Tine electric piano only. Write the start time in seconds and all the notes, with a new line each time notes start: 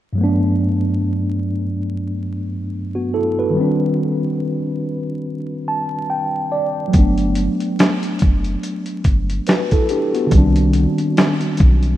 0.13 G2 F#3
0.18 A3 B3
0.24 D4
2.95 B3 F#4
3.14 E4 A4
3.39 F#4 B4
3.50 D#3 G3
3.58 C4 D4
5.68 A5
6.10 G5
6.52 D5
6.88 F#3 A3
6.95 B3 D4
9.48 F#4 B4
9.72 E4 A4
9.90 D4 G4
10.14 B3 F#4
10.27 D3 G3
10.33 D#3 C4
10.37 D4